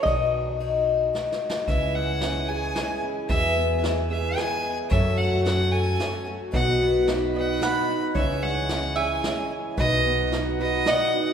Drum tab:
RD |x--x-----|---------|---------|---------|
HH |---------|x--x--x--|x--x--x--|x--x--x--|
SD |------ooo|---o--o--|---o--o--|---o--o--|
BD |o--------|o--------|o--------|o--------|

RD |---------|---------|---------|
HH |x--x--x--|x--x--x--|x--x--x--|
SD |---o--o--|---o--o--|---o--o--|
BD |o--------|o--------|o--------|